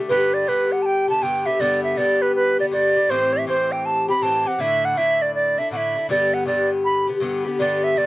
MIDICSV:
0, 0, Header, 1, 3, 480
1, 0, Start_track
1, 0, Key_signature, 1, "major"
1, 0, Tempo, 374532
1, 136, Time_signature, 4, 2, 24, 8
1, 10335, End_track
2, 0, Start_track
2, 0, Title_t, "Flute"
2, 0, Program_c, 0, 73
2, 120, Note_on_c, 0, 71, 87
2, 434, Note_on_c, 0, 74, 75
2, 453, Note_off_c, 0, 71, 0
2, 620, Note_on_c, 0, 71, 80
2, 639, Note_off_c, 0, 74, 0
2, 925, Note_on_c, 0, 78, 71
2, 944, Note_off_c, 0, 71, 0
2, 1053, Note_on_c, 0, 81, 65
2, 1073, Note_off_c, 0, 78, 0
2, 1099, Note_on_c, 0, 79, 91
2, 1118, Note_off_c, 0, 81, 0
2, 1398, Note_off_c, 0, 79, 0
2, 1405, Note_on_c, 0, 81, 85
2, 1572, Note_on_c, 0, 79, 88
2, 1591, Note_off_c, 0, 81, 0
2, 1873, Note_on_c, 0, 76, 78
2, 1892, Note_off_c, 0, 79, 0
2, 2055, Note_on_c, 0, 74, 96
2, 2074, Note_off_c, 0, 76, 0
2, 2345, Note_off_c, 0, 74, 0
2, 2352, Note_on_c, 0, 76, 81
2, 2529, Note_on_c, 0, 74, 88
2, 2548, Note_off_c, 0, 76, 0
2, 2843, Note_on_c, 0, 71, 74
2, 2862, Note_off_c, 0, 74, 0
2, 3010, Note_off_c, 0, 71, 0
2, 3018, Note_on_c, 0, 71, 90
2, 3300, Note_off_c, 0, 71, 0
2, 3333, Note_on_c, 0, 74, 83
2, 3408, Note_off_c, 0, 74, 0
2, 3494, Note_on_c, 0, 74, 87
2, 3975, Note_on_c, 0, 72, 104
2, 3994, Note_off_c, 0, 74, 0
2, 4272, Note_on_c, 0, 76, 89
2, 4291, Note_off_c, 0, 72, 0
2, 4449, Note_off_c, 0, 76, 0
2, 4466, Note_on_c, 0, 72, 90
2, 4768, Note_on_c, 0, 79, 88
2, 4787, Note_off_c, 0, 72, 0
2, 4942, Note_on_c, 0, 81, 99
2, 4961, Note_off_c, 0, 79, 0
2, 5240, Note_off_c, 0, 81, 0
2, 5248, Note_on_c, 0, 83, 88
2, 5415, Note_on_c, 0, 81, 88
2, 5435, Note_off_c, 0, 83, 0
2, 5732, Note_on_c, 0, 78, 84
2, 5751, Note_off_c, 0, 81, 0
2, 5903, Note_on_c, 0, 76, 101
2, 5923, Note_off_c, 0, 78, 0
2, 6216, Note_on_c, 0, 78, 89
2, 6235, Note_off_c, 0, 76, 0
2, 6376, Note_on_c, 0, 76, 92
2, 6395, Note_off_c, 0, 78, 0
2, 6690, Note_on_c, 0, 74, 79
2, 6709, Note_off_c, 0, 76, 0
2, 6844, Note_off_c, 0, 74, 0
2, 6852, Note_on_c, 0, 74, 89
2, 7161, Note_on_c, 0, 76, 79
2, 7180, Note_off_c, 0, 74, 0
2, 7323, Note_off_c, 0, 76, 0
2, 7331, Note_on_c, 0, 78, 71
2, 7391, Note_on_c, 0, 76, 77
2, 7404, Note_off_c, 0, 78, 0
2, 7779, Note_off_c, 0, 76, 0
2, 7823, Note_on_c, 0, 74, 95
2, 8124, Note_on_c, 0, 78, 83
2, 8143, Note_off_c, 0, 74, 0
2, 8287, Note_off_c, 0, 78, 0
2, 8295, Note_on_c, 0, 74, 81
2, 8579, Note_off_c, 0, 74, 0
2, 8775, Note_on_c, 0, 83, 90
2, 9059, Note_off_c, 0, 83, 0
2, 9735, Note_on_c, 0, 74, 84
2, 10045, Note_on_c, 0, 76, 82
2, 10064, Note_off_c, 0, 74, 0
2, 10225, Note_on_c, 0, 74, 90
2, 10245, Note_off_c, 0, 76, 0
2, 10335, Note_off_c, 0, 74, 0
2, 10335, End_track
3, 0, Start_track
3, 0, Title_t, "Bouzouki"
3, 0, Program_c, 1, 25
3, 0, Note_on_c, 1, 57, 49
3, 121, Note_on_c, 1, 43, 68
3, 129, Note_on_c, 1, 50, 72
3, 134, Note_off_c, 1, 57, 0
3, 139, Note_on_c, 1, 59, 72
3, 143, Note_on_c, 1, 67, 82
3, 584, Note_off_c, 1, 43, 0
3, 599, Note_off_c, 1, 50, 0
3, 599, Note_on_c, 1, 43, 54
3, 611, Note_off_c, 1, 59, 0
3, 614, Note_on_c, 1, 50, 52
3, 626, Note_on_c, 1, 59, 56
3, 629, Note_off_c, 1, 67, 0
3, 634, Note_on_c, 1, 67, 62
3, 1378, Note_off_c, 1, 67, 0
3, 1383, Note_on_c, 1, 67, 45
3, 1386, Note_off_c, 1, 59, 0
3, 1392, Note_off_c, 1, 43, 0
3, 1400, Note_off_c, 1, 50, 0
3, 1402, Note_on_c, 1, 59, 42
3, 1422, Note_on_c, 1, 50, 39
3, 1559, Note_on_c, 1, 43, 54
3, 1561, Note_off_c, 1, 50, 0
3, 1566, Note_off_c, 1, 67, 0
3, 1569, Note_off_c, 1, 59, 0
3, 1576, Note_on_c, 1, 50, 58
3, 1584, Note_on_c, 1, 59, 58
3, 1595, Note_on_c, 1, 67, 62
3, 1847, Note_off_c, 1, 67, 0
3, 1862, Note_on_c, 1, 67, 48
3, 1867, Note_off_c, 1, 59, 0
3, 1872, Note_off_c, 1, 43, 0
3, 1881, Note_off_c, 1, 50, 0
3, 1882, Note_on_c, 1, 59, 45
3, 1902, Note_on_c, 1, 50, 40
3, 2045, Note_off_c, 1, 67, 0
3, 2046, Note_off_c, 1, 50, 0
3, 2049, Note_on_c, 1, 43, 69
3, 2055, Note_off_c, 1, 59, 0
3, 2061, Note_on_c, 1, 50, 72
3, 2071, Note_on_c, 1, 59, 80
3, 2073, Note_on_c, 1, 67, 80
3, 2499, Note_off_c, 1, 43, 0
3, 2514, Note_off_c, 1, 50, 0
3, 2515, Note_on_c, 1, 43, 54
3, 2525, Note_off_c, 1, 59, 0
3, 2530, Note_on_c, 1, 50, 58
3, 2541, Note_on_c, 1, 59, 59
3, 2546, Note_off_c, 1, 67, 0
3, 2551, Note_on_c, 1, 67, 62
3, 3309, Note_off_c, 1, 43, 0
3, 3311, Note_off_c, 1, 67, 0
3, 3316, Note_on_c, 1, 67, 47
3, 3317, Note_off_c, 1, 50, 0
3, 3319, Note_off_c, 1, 59, 0
3, 3334, Note_on_c, 1, 59, 45
3, 3352, Note_on_c, 1, 50, 41
3, 3477, Note_off_c, 1, 50, 0
3, 3479, Note_on_c, 1, 43, 55
3, 3489, Note_off_c, 1, 59, 0
3, 3491, Note_off_c, 1, 67, 0
3, 3492, Note_on_c, 1, 50, 62
3, 3504, Note_on_c, 1, 59, 58
3, 3515, Note_on_c, 1, 67, 62
3, 3774, Note_off_c, 1, 67, 0
3, 3790, Note_on_c, 1, 67, 52
3, 3792, Note_off_c, 1, 43, 0
3, 3796, Note_off_c, 1, 59, 0
3, 3798, Note_off_c, 1, 50, 0
3, 3812, Note_on_c, 1, 59, 43
3, 3826, Note_on_c, 1, 50, 42
3, 3962, Note_on_c, 1, 45, 71
3, 3968, Note_off_c, 1, 67, 0
3, 3971, Note_off_c, 1, 50, 0
3, 3976, Note_on_c, 1, 52, 73
3, 3977, Note_off_c, 1, 59, 0
3, 3982, Note_on_c, 1, 60, 74
3, 3990, Note_on_c, 1, 67, 80
3, 4429, Note_off_c, 1, 45, 0
3, 4445, Note_on_c, 1, 45, 52
3, 4448, Note_off_c, 1, 52, 0
3, 4452, Note_off_c, 1, 60, 0
3, 4453, Note_on_c, 1, 52, 59
3, 4461, Note_off_c, 1, 67, 0
3, 4468, Note_on_c, 1, 60, 60
3, 4479, Note_on_c, 1, 67, 67
3, 5218, Note_off_c, 1, 67, 0
3, 5234, Note_off_c, 1, 45, 0
3, 5234, Note_on_c, 1, 67, 45
3, 5238, Note_off_c, 1, 60, 0
3, 5254, Note_on_c, 1, 60, 44
3, 5267, Note_off_c, 1, 52, 0
3, 5272, Note_on_c, 1, 52, 39
3, 5397, Note_off_c, 1, 52, 0
3, 5398, Note_on_c, 1, 45, 53
3, 5409, Note_off_c, 1, 60, 0
3, 5410, Note_off_c, 1, 67, 0
3, 5413, Note_on_c, 1, 52, 60
3, 5424, Note_on_c, 1, 60, 61
3, 5437, Note_on_c, 1, 67, 65
3, 5689, Note_off_c, 1, 67, 0
3, 5704, Note_on_c, 1, 67, 51
3, 5707, Note_off_c, 1, 60, 0
3, 5711, Note_off_c, 1, 45, 0
3, 5718, Note_off_c, 1, 52, 0
3, 5722, Note_on_c, 1, 60, 46
3, 5739, Note_on_c, 1, 52, 40
3, 5879, Note_on_c, 1, 45, 69
3, 5883, Note_off_c, 1, 52, 0
3, 5885, Note_off_c, 1, 67, 0
3, 5888, Note_on_c, 1, 50, 76
3, 5892, Note_off_c, 1, 60, 0
3, 5897, Note_on_c, 1, 62, 73
3, 5904, Note_on_c, 1, 64, 73
3, 6337, Note_off_c, 1, 45, 0
3, 6352, Note_on_c, 1, 45, 54
3, 6366, Note_off_c, 1, 50, 0
3, 6371, Note_on_c, 1, 50, 55
3, 6375, Note_off_c, 1, 62, 0
3, 6375, Note_off_c, 1, 64, 0
3, 6381, Note_on_c, 1, 62, 63
3, 6390, Note_on_c, 1, 64, 60
3, 7131, Note_off_c, 1, 64, 0
3, 7146, Note_on_c, 1, 64, 50
3, 7149, Note_off_c, 1, 45, 0
3, 7165, Note_off_c, 1, 62, 0
3, 7170, Note_on_c, 1, 62, 40
3, 7182, Note_off_c, 1, 50, 0
3, 7187, Note_on_c, 1, 50, 41
3, 7320, Note_off_c, 1, 50, 0
3, 7322, Note_on_c, 1, 45, 58
3, 7327, Note_off_c, 1, 64, 0
3, 7334, Note_off_c, 1, 62, 0
3, 7335, Note_on_c, 1, 50, 55
3, 7350, Note_on_c, 1, 62, 64
3, 7360, Note_on_c, 1, 64, 65
3, 7614, Note_off_c, 1, 64, 0
3, 7629, Note_on_c, 1, 64, 43
3, 7632, Note_off_c, 1, 62, 0
3, 7633, Note_off_c, 1, 45, 0
3, 7640, Note_off_c, 1, 50, 0
3, 7647, Note_on_c, 1, 62, 42
3, 7668, Note_on_c, 1, 50, 39
3, 7799, Note_off_c, 1, 50, 0
3, 7803, Note_on_c, 1, 43, 67
3, 7808, Note_off_c, 1, 64, 0
3, 7814, Note_on_c, 1, 50, 69
3, 7818, Note_off_c, 1, 62, 0
3, 7824, Note_on_c, 1, 59, 70
3, 7827, Note_on_c, 1, 67, 78
3, 8258, Note_off_c, 1, 43, 0
3, 8273, Note_on_c, 1, 43, 55
3, 8274, Note_off_c, 1, 50, 0
3, 8286, Note_off_c, 1, 59, 0
3, 8290, Note_on_c, 1, 50, 53
3, 8301, Note_on_c, 1, 59, 55
3, 8306, Note_off_c, 1, 67, 0
3, 8311, Note_on_c, 1, 67, 55
3, 9058, Note_off_c, 1, 59, 0
3, 9063, Note_off_c, 1, 67, 0
3, 9063, Note_on_c, 1, 67, 44
3, 9070, Note_off_c, 1, 43, 0
3, 9078, Note_off_c, 1, 50, 0
3, 9087, Note_on_c, 1, 59, 46
3, 9101, Note_on_c, 1, 50, 40
3, 9226, Note_off_c, 1, 50, 0
3, 9231, Note_on_c, 1, 43, 67
3, 9242, Note_off_c, 1, 59, 0
3, 9246, Note_off_c, 1, 67, 0
3, 9248, Note_on_c, 1, 50, 63
3, 9257, Note_on_c, 1, 59, 66
3, 9269, Note_on_c, 1, 67, 63
3, 9527, Note_off_c, 1, 67, 0
3, 9543, Note_on_c, 1, 67, 58
3, 9549, Note_off_c, 1, 43, 0
3, 9550, Note_off_c, 1, 59, 0
3, 9557, Note_off_c, 1, 50, 0
3, 9565, Note_on_c, 1, 59, 49
3, 9581, Note_on_c, 1, 50, 46
3, 9722, Note_off_c, 1, 50, 0
3, 9726, Note_off_c, 1, 67, 0
3, 9726, Note_on_c, 1, 43, 67
3, 9731, Note_off_c, 1, 59, 0
3, 9738, Note_on_c, 1, 50, 67
3, 9747, Note_on_c, 1, 59, 77
3, 9755, Note_on_c, 1, 67, 75
3, 10187, Note_off_c, 1, 43, 0
3, 10200, Note_off_c, 1, 50, 0
3, 10202, Note_on_c, 1, 43, 57
3, 10211, Note_off_c, 1, 59, 0
3, 10215, Note_on_c, 1, 50, 59
3, 10227, Note_on_c, 1, 59, 59
3, 10233, Note_off_c, 1, 67, 0
3, 10238, Note_on_c, 1, 67, 64
3, 10335, Note_off_c, 1, 43, 0
3, 10335, Note_off_c, 1, 50, 0
3, 10335, Note_off_c, 1, 59, 0
3, 10335, Note_off_c, 1, 67, 0
3, 10335, End_track
0, 0, End_of_file